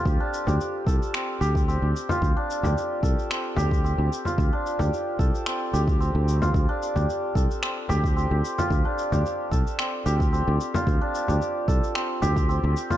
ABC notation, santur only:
X:1
M:4/4
L:1/16
Q:"Swing 16ths" 1/4=111
K:Dm
V:1 name="Santur"
z D z G z2 A z C2 G2 C z2 F | z D z G z2 A z C2 G2 C z2 F | z D z G z2 A z C2 G2 C z2 F | z D z G z2 A z C2 G2 C z2 F |
z D z G z2 A z C2 G2 C z2 F | z D z G z2 A z C2 G2 C z2 F |]